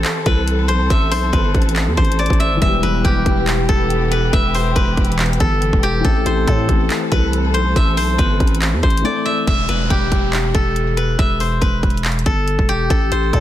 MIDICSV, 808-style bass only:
0, 0, Header, 1, 2, 480
1, 0, Start_track
1, 0, Key_signature, 1, "minor"
1, 0, Tempo, 428571
1, 1011, Time_signature, 4, 2, 24, 8
1, 15009, End_track
2, 0, Start_track
2, 0, Title_t, "808-style bass"
2, 0, Program_c, 0, 38
2, 292, Note_on_c, 0, 36, 108
2, 771, Note_on_c, 0, 35, 106
2, 788, Note_off_c, 0, 36, 0
2, 898, Note_on_c, 0, 36, 99
2, 915, Note_off_c, 0, 35, 0
2, 1006, Note_off_c, 0, 36, 0
2, 1011, Note_on_c, 0, 33, 108
2, 1251, Note_on_c, 0, 35, 101
2, 1268, Note_off_c, 0, 33, 0
2, 1479, Note_off_c, 0, 35, 0
2, 1492, Note_on_c, 0, 31, 110
2, 1722, Note_off_c, 0, 31, 0
2, 1731, Note_on_c, 0, 33, 111
2, 2099, Note_on_c, 0, 40, 101
2, 2115, Note_off_c, 0, 33, 0
2, 2206, Note_off_c, 0, 40, 0
2, 2212, Note_on_c, 0, 33, 102
2, 2564, Note_off_c, 0, 33, 0
2, 2578, Note_on_c, 0, 33, 109
2, 2819, Note_on_c, 0, 31, 97
2, 2836, Note_off_c, 0, 33, 0
2, 2926, Note_off_c, 0, 31, 0
2, 2931, Note_on_c, 0, 28, 117
2, 3162, Note_off_c, 0, 28, 0
2, 3171, Note_on_c, 0, 28, 106
2, 3402, Note_off_c, 0, 28, 0
2, 3412, Note_on_c, 0, 28, 108
2, 3642, Note_off_c, 0, 28, 0
2, 3651, Note_on_c, 0, 28, 106
2, 4112, Note_off_c, 0, 28, 0
2, 4132, Note_on_c, 0, 28, 104
2, 4823, Note_off_c, 0, 28, 0
2, 4851, Note_on_c, 0, 28, 116
2, 5312, Note_off_c, 0, 28, 0
2, 5332, Note_on_c, 0, 28, 110
2, 5562, Note_off_c, 0, 28, 0
2, 5571, Note_on_c, 0, 28, 108
2, 6032, Note_off_c, 0, 28, 0
2, 6052, Note_on_c, 0, 31, 101
2, 6405, Note_off_c, 0, 31, 0
2, 6418, Note_on_c, 0, 28, 104
2, 6757, Note_off_c, 0, 28, 0
2, 6771, Note_on_c, 0, 33, 120
2, 7002, Note_off_c, 0, 33, 0
2, 7011, Note_on_c, 0, 33, 108
2, 7242, Note_off_c, 0, 33, 0
2, 7252, Note_on_c, 0, 45, 107
2, 7482, Note_off_c, 0, 45, 0
2, 7491, Note_on_c, 0, 33, 107
2, 7722, Note_off_c, 0, 33, 0
2, 7972, Note_on_c, 0, 36, 108
2, 8451, Note_on_c, 0, 35, 104
2, 8468, Note_off_c, 0, 36, 0
2, 8579, Note_on_c, 0, 36, 98
2, 8595, Note_off_c, 0, 35, 0
2, 8686, Note_off_c, 0, 36, 0
2, 8691, Note_on_c, 0, 33, 111
2, 8931, Note_on_c, 0, 35, 102
2, 8948, Note_off_c, 0, 33, 0
2, 9159, Note_off_c, 0, 35, 0
2, 9172, Note_on_c, 0, 31, 111
2, 9402, Note_off_c, 0, 31, 0
2, 9411, Note_on_c, 0, 33, 111
2, 9778, Note_on_c, 0, 40, 99
2, 9795, Note_off_c, 0, 33, 0
2, 9886, Note_off_c, 0, 40, 0
2, 9892, Note_on_c, 0, 33, 103
2, 10122, Note_off_c, 0, 33, 0
2, 10611, Note_on_c, 0, 28, 113
2, 10842, Note_off_c, 0, 28, 0
2, 10851, Note_on_c, 0, 28, 102
2, 11082, Note_off_c, 0, 28, 0
2, 11092, Note_on_c, 0, 28, 103
2, 11322, Note_off_c, 0, 28, 0
2, 11331, Note_on_c, 0, 28, 105
2, 11792, Note_off_c, 0, 28, 0
2, 11812, Note_on_c, 0, 28, 100
2, 12503, Note_off_c, 0, 28, 0
2, 12531, Note_on_c, 0, 28, 111
2, 12992, Note_off_c, 0, 28, 0
2, 13012, Note_on_c, 0, 28, 107
2, 13242, Note_off_c, 0, 28, 0
2, 13251, Note_on_c, 0, 28, 106
2, 13712, Note_off_c, 0, 28, 0
2, 13732, Note_on_c, 0, 31, 100
2, 14084, Note_off_c, 0, 31, 0
2, 14098, Note_on_c, 0, 28, 98
2, 14437, Note_off_c, 0, 28, 0
2, 14451, Note_on_c, 0, 33, 114
2, 14682, Note_off_c, 0, 33, 0
2, 14691, Note_on_c, 0, 33, 101
2, 14921, Note_off_c, 0, 33, 0
2, 14932, Note_on_c, 0, 45, 106
2, 15009, Note_off_c, 0, 45, 0
2, 15009, End_track
0, 0, End_of_file